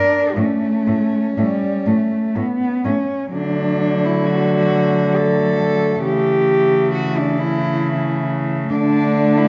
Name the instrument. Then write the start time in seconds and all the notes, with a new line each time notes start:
cello
Already playing: D4 A#4
0.36 A2 A3 C#4
0.87 A2 A3
1.37 A2 G3 A3
1.86 A2 A3
2.35 A2 A3 B3
2.85 A2 A3 C#4
3.33 D3 F#3 A3 D4
4.05 E4
4.26 F#4
5.16 A4
6.03 C#3 E3 G4
6.94 F#4
7.18 D4
7.39 E4
8.68 D3 A3 D4
9.37 E4